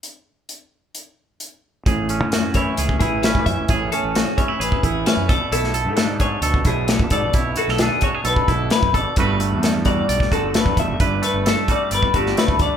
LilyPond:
<<
  \new Staff \with { instrumentName = "Clean electric guitar" } { \time 4/4 \key a \major \tempo 4 = 131 r1 | r4. cis''4 gis'8 b'8 e''8 | cis''8 a'8 gis'8 cis''8 b'8 gis'8 b'8 d''8 | a'4 r8 cis''4 gis'8 a'8 d''8 |
cis''8 a'8 gis'8 cis''8 b'8 a'8 b'8 d''8 | b'4 r8 d''4 a'8 b'8 e''8 | d''8 b'8 a'8 d''8 b'8 g'8 b'8 d''8 | }
  \new Staff \with { instrumentName = "Clean electric guitar" } { \time 4/4 \key a \major << { r1 | gis'8 cis'8 fis'8 e'8 gis'8 e'8 cis'4 | gis'8 cis'8 fis'8 cis'16 e'16 gis'8 e'8 cis'8 a'8 | e'8 a'8 a'8 gis'8 a'8 e'4 a'8 |
e'8 fis'16 a'16 a'8 fis'16 gis'16 a'8 e'4 a'8 | <g a fis' b'>8 a8 a'8 fis'8 d''8 fis'8 a4 | b'8 a8 a'8 fis'8 d''8 fis'8 a4 | } \\ { r1 | a,4. e4 e4. | a,4. e4 e4 b,8~ | b,4 d'4 b,4. b,8~ |
b,4 d'4 b,4. b,8 | g,4. g4 d4. | g,4. g4 d4. | } >> }
  \new Staff \with { instrumentName = "Fingered electric bass" } { \clef bass \time 4/4 \key a \major r1 | a,,8. fis,4~ fis,16 cis,8 a,,8. a,16 fis,16 a,,16 | a,,8 r16 a,,8 r8. a,,16 r16 a,,8 r16 fis,16 b,,16 r16 | b,,8. gis,4~ gis,16 d,8 b,,8. b,16 gis,16 b,,16 |
b,,8 r16 b,,8 r8. b,,16 r16 b,,8 r16 fis,16 gis,,16 r16 | g,,8. e,4~ e,16 b,,8 g,,8. g,16 e,16 g,,16 | g,,8 r16 g,,8 r8. g,,16 r16 g,,8 r16 d,16 d,16 r16 | }
  \new DrumStaff \with { instrumentName = "Drums" } \drummode { \time 4/4 hh4 hh4 hh4 hh4 | <hh bd>8 hh8 <hh sn>8 <hh bd>8 hh16 bd16 <hh bd>8 <hh sn>16 bd16 <hh bd>8 | <hh bd>8 hh8 <hh sn>8 <hh bd>8 hh16 bd16 <hh bd>8 <hh sn>8 <hh bd>8 | hh16 sn16 hh8 <hh sn>8 <hh bd>8 hh16 bd16 <hh bd>8 <hh sn>16 bd16 <hh bd>8 |
<hh bd>8 hh16 sn16 <hh sn>8 <hh bd>8 hh16 bd16 <hh bd>8 <hh sn>16 bd16 <hh bd>8 | <hh bd>8 hh8 <hh sn>8 <hh bd>8 hh16 <bd sn>16 <hh bd>8 <hh sn>16 bd16 <hh bd>8 | <hh bd>8 hh8 <hh sn>8 <hh bd>8 hh16 bd16 <hh bd>16 sn16 <hh sn>16 bd16 <hh bd>8 | }
>>